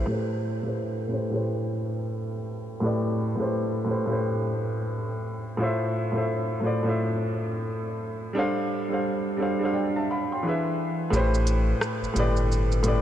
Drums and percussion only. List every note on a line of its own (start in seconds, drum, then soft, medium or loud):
11.13 shaker medium
11.34 shaker soft
11.47 closed hi-hat medium
11.47 shaker medium
11.81 cross-stick loud
11.81 shaker medium
12.04 shaker soft
12.16 closed hi-hat medium
12.16 shaker soft
12.36 shaker soft
12.52 shaker medium
12.72 shaker soft
12.84 closed hi-hat medium
12.84 shaker soft